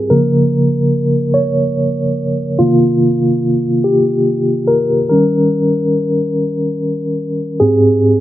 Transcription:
0, 0, Header, 1, 2, 480
1, 0, Start_track
1, 0, Tempo, 833333
1, 54, Time_signature, 6, 3, 24, 8
1, 4725, End_track
2, 0, Start_track
2, 0, Title_t, "Tine electric piano"
2, 0, Program_c, 0, 4
2, 0, Control_c, 0, 64, 127
2, 0, Note_on_c, 0, 68, 83
2, 58, Note_on_c, 0, 70, 90
2, 61, Control_c, 0, 64, 0
2, 61, Note_on_c, 0, 49, 51
2, 65, Note_on_c, 0, 53, 49
2, 68, Note_on_c, 0, 58, 54
2, 77, Note_off_c, 0, 68, 0
2, 153, Control_c, 0, 64, 127
2, 755, Note_off_c, 0, 49, 0
2, 757, Note_off_c, 0, 53, 0
2, 758, Note_off_c, 0, 58, 0
2, 771, Note_on_c, 0, 73, 92
2, 798, Note_off_c, 0, 70, 0
2, 1290, Note_off_c, 0, 73, 0
2, 1490, Note_on_c, 0, 65, 87
2, 1492, Note_on_c, 0, 48, 46
2, 1499, Note_on_c, 0, 51, 47
2, 1501, Note_on_c, 0, 58, 56
2, 1503, Control_c, 0, 64, 0
2, 1590, Control_c, 0, 64, 127
2, 2189, Note_off_c, 0, 65, 0
2, 2190, Note_off_c, 0, 48, 0
2, 2194, Note_off_c, 0, 51, 0
2, 2195, Note_off_c, 0, 58, 0
2, 2213, Note_on_c, 0, 67, 80
2, 2693, Note_on_c, 0, 70, 83
2, 2708, Note_off_c, 0, 67, 0
2, 2801, Note_off_c, 0, 70, 0
2, 2933, Note_on_c, 0, 70, 79
2, 2940, Note_on_c, 0, 51, 50
2, 2941, Control_c, 0, 64, 0
2, 2944, Note_on_c, 0, 55, 43
2, 2946, Note_on_c, 0, 61, 52
2, 3032, Control_c, 0, 64, 127
2, 3631, Note_off_c, 0, 70, 0
2, 3634, Note_off_c, 0, 51, 0
2, 3636, Note_off_c, 0, 55, 0
2, 3637, Note_off_c, 0, 61, 0
2, 4377, Note_on_c, 0, 68, 81
2, 4380, Control_c, 0, 64, 0
2, 4382, Note_on_c, 0, 44, 49
2, 4384, Note_on_c, 0, 67, 49
2, 4386, Note_on_c, 0, 60, 54
2, 4483, Control_c, 0, 64, 127
2, 4725, Note_off_c, 0, 44, 0
2, 4725, Note_off_c, 0, 60, 0
2, 4725, Note_off_c, 0, 67, 0
2, 4725, Note_off_c, 0, 68, 0
2, 4725, End_track
0, 0, End_of_file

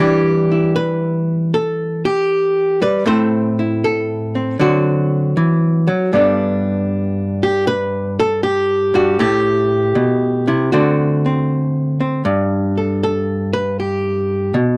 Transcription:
0, 0, Header, 1, 2, 480
1, 0, Start_track
1, 0, Key_signature, 1, "major"
1, 0, Tempo, 766284
1, 1911, Time_signature, 4, 2, 24, 8
1, 9253, End_track
2, 0, Start_track
2, 0, Title_t, "Hollow-body jazz guitar"
2, 0, Program_c, 0, 26
2, 0, Note_on_c, 0, 52, 66
2, 0, Note_on_c, 0, 55, 45
2, 0, Note_on_c, 0, 67, 69
2, 2, Note_on_c, 0, 62, 43
2, 8, Note_on_c, 0, 64, 38
2, 315, Note_off_c, 0, 64, 0
2, 323, Note_on_c, 0, 64, 38
2, 472, Note_off_c, 0, 67, 0
2, 474, Note_on_c, 0, 71, 83
2, 952, Note_off_c, 0, 71, 0
2, 965, Note_on_c, 0, 69, 77
2, 1281, Note_off_c, 0, 69, 0
2, 1285, Note_on_c, 0, 67, 83
2, 1436, Note_off_c, 0, 55, 0
2, 1760, Note_off_c, 0, 67, 0
2, 1764, Note_on_c, 0, 55, 57
2, 1768, Note_on_c, 0, 71, 81
2, 1894, Note_off_c, 0, 52, 0
2, 1899, Note_off_c, 0, 64, 0
2, 1901, Note_off_c, 0, 62, 0
2, 1914, Note_on_c, 0, 45, 67
2, 1916, Note_off_c, 0, 55, 0
2, 1918, Note_off_c, 0, 71, 0
2, 1919, Note_on_c, 0, 57, 45
2, 1922, Note_on_c, 0, 60, 47
2, 1925, Note_on_c, 0, 72, 87
2, 1927, Note_on_c, 0, 64, 43
2, 2242, Note_off_c, 0, 64, 0
2, 2249, Note_on_c, 0, 64, 43
2, 2398, Note_off_c, 0, 72, 0
2, 2407, Note_on_c, 0, 69, 78
2, 2719, Note_off_c, 0, 60, 0
2, 2726, Note_on_c, 0, 60, 40
2, 2854, Note_off_c, 0, 45, 0
2, 2859, Note_off_c, 0, 60, 0
2, 2860, Note_off_c, 0, 64, 0
2, 2878, Note_on_c, 0, 50, 64
2, 2879, Note_off_c, 0, 57, 0
2, 2880, Note_off_c, 0, 69, 0
2, 2882, Note_on_c, 0, 54, 45
2, 2887, Note_on_c, 0, 60, 37
2, 2888, Note_on_c, 0, 66, 70
2, 3355, Note_off_c, 0, 50, 0
2, 3363, Note_on_c, 0, 52, 58
2, 3673, Note_off_c, 0, 54, 0
2, 3680, Note_off_c, 0, 52, 0
2, 3680, Note_on_c, 0, 54, 59
2, 3819, Note_off_c, 0, 60, 0
2, 3834, Note_off_c, 0, 54, 0
2, 3839, Note_off_c, 0, 66, 0
2, 3839, Note_on_c, 0, 43, 69
2, 3843, Note_on_c, 0, 55, 46
2, 3849, Note_on_c, 0, 59, 42
2, 3855, Note_on_c, 0, 62, 48
2, 3859, Note_on_c, 0, 69, 42
2, 4652, Note_off_c, 0, 69, 0
2, 4655, Note_on_c, 0, 67, 81
2, 4801, Note_off_c, 0, 67, 0
2, 4806, Note_on_c, 0, 71, 96
2, 5121, Note_off_c, 0, 71, 0
2, 5133, Note_on_c, 0, 69, 96
2, 5279, Note_off_c, 0, 69, 0
2, 5282, Note_on_c, 0, 67, 88
2, 5593, Note_off_c, 0, 43, 0
2, 5600, Note_on_c, 0, 43, 58
2, 5604, Note_off_c, 0, 62, 0
2, 5607, Note_on_c, 0, 66, 80
2, 5737, Note_off_c, 0, 55, 0
2, 5738, Note_off_c, 0, 59, 0
2, 5753, Note_off_c, 0, 43, 0
2, 5755, Note_off_c, 0, 67, 0
2, 5757, Note_off_c, 0, 66, 0
2, 5758, Note_on_c, 0, 45, 67
2, 5765, Note_on_c, 0, 57, 37
2, 5765, Note_on_c, 0, 67, 88
2, 5770, Note_on_c, 0, 64, 42
2, 6232, Note_off_c, 0, 45, 0
2, 6234, Note_on_c, 0, 47, 58
2, 6554, Note_off_c, 0, 47, 0
2, 6555, Note_off_c, 0, 64, 0
2, 6561, Note_on_c, 0, 48, 56
2, 6565, Note_on_c, 0, 64, 58
2, 6695, Note_off_c, 0, 57, 0
2, 6714, Note_off_c, 0, 48, 0
2, 6714, Note_off_c, 0, 64, 0
2, 6716, Note_off_c, 0, 67, 0
2, 6716, Note_on_c, 0, 66, 72
2, 6721, Note_on_c, 0, 50, 64
2, 6724, Note_on_c, 0, 57, 40
2, 6729, Note_on_c, 0, 60, 45
2, 7041, Note_off_c, 0, 60, 0
2, 7052, Note_on_c, 0, 60, 44
2, 7512, Note_off_c, 0, 60, 0
2, 7520, Note_on_c, 0, 60, 44
2, 7653, Note_off_c, 0, 60, 0
2, 7655, Note_off_c, 0, 50, 0
2, 7656, Note_off_c, 0, 57, 0
2, 7671, Note_off_c, 0, 66, 0
2, 7673, Note_on_c, 0, 43, 69
2, 8002, Note_on_c, 0, 69, 41
2, 8153, Note_off_c, 0, 69, 0
2, 8165, Note_on_c, 0, 69, 69
2, 8475, Note_off_c, 0, 69, 0
2, 8478, Note_on_c, 0, 71, 81
2, 8631, Note_off_c, 0, 71, 0
2, 8642, Note_on_c, 0, 67, 50
2, 9106, Note_off_c, 0, 43, 0
2, 9108, Note_on_c, 0, 47, 61
2, 9114, Note_off_c, 0, 67, 0
2, 9253, Note_off_c, 0, 47, 0
2, 9253, End_track
0, 0, End_of_file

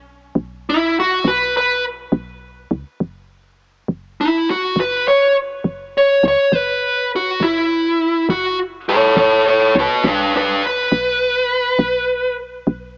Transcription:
0, 0, Header, 1, 3, 480
1, 0, Start_track
1, 0, Key_signature, 3, "minor"
1, 0, Tempo, 586510
1, 2456, Time_signature, 12, 3, 24, 8
1, 10620, End_track
2, 0, Start_track
2, 0, Title_t, "Lead electric guitar"
2, 0, Program_c, 0, 29
2, 569, Note_on_c, 0, 64, 83
2, 787, Note_off_c, 0, 64, 0
2, 815, Note_on_c, 0, 66, 81
2, 1030, Note_off_c, 0, 66, 0
2, 1045, Note_on_c, 0, 71, 78
2, 1264, Note_off_c, 0, 71, 0
2, 1285, Note_on_c, 0, 71, 86
2, 1504, Note_off_c, 0, 71, 0
2, 3444, Note_on_c, 0, 64, 80
2, 3663, Note_off_c, 0, 64, 0
2, 3686, Note_on_c, 0, 66, 86
2, 3904, Note_off_c, 0, 66, 0
2, 3929, Note_on_c, 0, 71, 87
2, 4146, Note_off_c, 0, 71, 0
2, 4157, Note_on_c, 0, 73, 92
2, 4380, Note_off_c, 0, 73, 0
2, 4891, Note_on_c, 0, 73, 84
2, 5107, Note_off_c, 0, 73, 0
2, 5138, Note_on_c, 0, 73, 80
2, 5364, Note_off_c, 0, 73, 0
2, 5364, Note_on_c, 0, 71, 85
2, 5816, Note_off_c, 0, 71, 0
2, 5857, Note_on_c, 0, 66, 77
2, 6070, Note_off_c, 0, 66, 0
2, 6077, Note_on_c, 0, 64, 78
2, 6766, Note_off_c, 0, 64, 0
2, 6793, Note_on_c, 0, 66, 99
2, 7018, Note_off_c, 0, 66, 0
2, 7274, Note_on_c, 0, 69, 72
2, 7279, Note_on_c, 0, 73, 88
2, 7497, Note_off_c, 0, 69, 0
2, 7501, Note_off_c, 0, 73, 0
2, 7507, Note_on_c, 0, 69, 66
2, 7516, Note_on_c, 0, 73, 77
2, 7726, Note_off_c, 0, 69, 0
2, 7739, Note_off_c, 0, 73, 0
2, 7755, Note_on_c, 0, 69, 59
2, 7760, Note_on_c, 0, 73, 70
2, 7970, Note_off_c, 0, 69, 0
2, 7982, Note_off_c, 0, 73, 0
2, 8014, Note_on_c, 0, 66, 64
2, 8020, Note_on_c, 0, 71, 75
2, 8220, Note_off_c, 0, 66, 0
2, 8232, Note_off_c, 0, 71, 0
2, 8242, Note_on_c, 0, 62, 68
2, 8249, Note_on_c, 0, 71, 83
2, 8454, Note_off_c, 0, 62, 0
2, 8466, Note_off_c, 0, 71, 0
2, 8476, Note_on_c, 0, 62, 71
2, 8490, Note_on_c, 0, 71, 89
2, 8691, Note_off_c, 0, 62, 0
2, 8707, Note_off_c, 0, 71, 0
2, 8728, Note_on_c, 0, 71, 82
2, 10120, Note_off_c, 0, 71, 0
2, 10620, End_track
3, 0, Start_track
3, 0, Title_t, "FM bass"
3, 0, Program_c, 1, 39
3, 0, Note_on_c, 1, 35, 100
3, 263, Note_off_c, 1, 35, 0
3, 289, Note_on_c, 1, 35, 98
3, 980, Note_off_c, 1, 35, 0
3, 1018, Note_on_c, 1, 35, 98
3, 1705, Note_off_c, 1, 35, 0
3, 1735, Note_on_c, 1, 35, 106
3, 2183, Note_off_c, 1, 35, 0
3, 2217, Note_on_c, 1, 37, 89
3, 2327, Note_off_c, 1, 37, 0
3, 2458, Note_on_c, 1, 30, 102
3, 3144, Note_off_c, 1, 30, 0
3, 3179, Note_on_c, 1, 30, 94
3, 3865, Note_off_c, 1, 30, 0
3, 3895, Note_on_c, 1, 30, 98
3, 4583, Note_off_c, 1, 30, 0
3, 4619, Note_on_c, 1, 30, 106
3, 5065, Note_off_c, 1, 30, 0
3, 5102, Note_on_c, 1, 37, 96
3, 5210, Note_off_c, 1, 37, 0
3, 5337, Note_on_c, 1, 30, 109
3, 6024, Note_off_c, 1, 30, 0
3, 6058, Note_on_c, 1, 30, 95
3, 6745, Note_off_c, 1, 30, 0
3, 6783, Note_on_c, 1, 30, 99
3, 7467, Note_off_c, 1, 30, 0
3, 7498, Note_on_c, 1, 30, 107
3, 7945, Note_off_c, 1, 30, 0
3, 7981, Note_on_c, 1, 37, 95
3, 8089, Note_off_c, 1, 37, 0
3, 8216, Note_on_c, 1, 35, 107
3, 8904, Note_off_c, 1, 35, 0
3, 8935, Note_on_c, 1, 35, 100
3, 9623, Note_off_c, 1, 35, 0
3, 9647, Note_on_c, 1, 35, 98
3, 10339, Note_off_c, 1, 35, 0
3, 10369, Note_on_c, 1, 35, 100
3, 10620, Note_off_c, 1, 35, 0
3, 10620, End_track
0, 0, End_of_file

